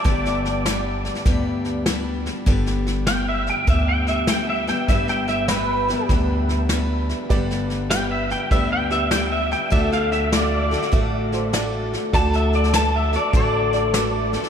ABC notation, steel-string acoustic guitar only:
X:1
M:4/4
L:1/8
Q:"Swing" 1/4=99
K:G
V:1 name="Steel-string acoustic guitar"
[G,,D,G,B,DB]2 [G,B,DB]2 [G,,D,G,B,DB]2 [G,B,DB]2 | [G,,D,G,B,DB]2 [G,B,DB]2 [G,,D,G,B,DB]2 [G,B,DB] [G,B,DB] | [G,,D,G,B,DB]2 [G,B,DB] [G,B,DB] [G,,D,G,B,DB]2 [G,B,DB]2 | [G,,D,G,B,DB]2 [G,B,DB]2 [G,,D,G,B,DB]2 [G,B,DB]2 |
[D,A,DFA]2 [A,DFA] [DFA] [D,A,DFA]2 [A,DFA]2 | [D,A,DFA]2 [A,DFA] [DFA] [D,A,DFA]2 [A,DFA] [DFA] |]